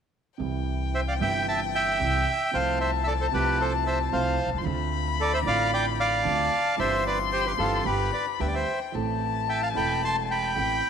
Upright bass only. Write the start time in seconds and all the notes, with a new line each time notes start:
0.40 C2
1.21 G1
2.01 C2
2.54 C2
3.34 C2
4.13 C2
4.47 B1
4.53 C2
4.60 C#2
4.66 D2
5.46 A1
6.25 D2
6.78 G1
7.59 G1
7.86 G1
8.40 D2
8.95 A1
9.76 E1
10.57 A1